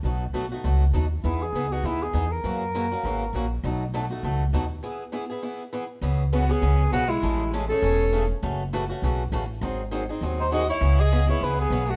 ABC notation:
X:1
M:4/4
L:1/8
Q:"Swing" 1/4=200
K:E
V:1 name="Cor anglais"
z8 | E G2 F E G2 ^A- | ^A6- A z | z8 |
z8 | [K:C#m] z2 F G3 F E- | E2 z A4 z | z8 |
z4 z ^B d c- | c d2 c B G2 F |]
V:2 name="Violin"
z8 | z8 | z8 | z8 |
z8 | [K:C#m] z2 B, B,3 B, G,- | G,2 z C4 z | z8 |
z4 z D F E- | E G2 E E B,2 A, |]
V:3 name="Steel-string acoustic guitar"
[B,,F,A,DF] z [B,,F,A,DF] [A,DF] [B,,F,A,DF] z [B,,F,A,DF] z | [E,B,DG] z [E,B,DG] [B,DG] [E,B,DG] z [E,B,DG] z | [C,E,^A,CF] z [C,E,A,CF] [A,CF] [C,E,A,CF] z [C,E,A,CF] z | [B,,F,A,DF] z [B,,F,A,DF] [A,DF] [B,,F,A,DF] z [B,,F,A,DF] z |
[E,B,EG] z [E,B,EG] [B,EG] [E,B,EG] z [E,B,EG] z | [K:C#m] [C,E,B,CG] z [C,E,B,CG] [B,CG] [C,E,B,CG] z [C,E,B,CG] z | [C,E,A,CG] z [C,E,A,CG] [A,CG] [C,E,A,CG] z [C,E,A,CG] z | [C,E,A,CF] z [C,E,A,CF] [A,CF] [C,E,A,CF] z [C,E,A,CF] z |
[D,F,^B,DG] z [D,F,B,DG] [B,DG] [D,F,B,DG] z [D,F,B,DG] z | [C,E,B,CG] z [C,E,B,CG] [B,CG] [C,E,B,CG] z [C,E,B,CG] z |]
V:4 name="Upright bass" clef=bass
B,,,2 B,,,2 C,,2 D,,2 | E,,2 C,,2 D,,2 E,,2 | F,,4 G,,,2 ^A,,,2 | B,,,4 C,,2 D,,2 |
z8 | [K:C#m] C,,4 C,,2 B,,,2 | A,,,4 E,,,4 | F,,,4 B,,,2 A,,,2 |
G,,,4 D,,4 | C,,4 C,,2 B,,,2 |]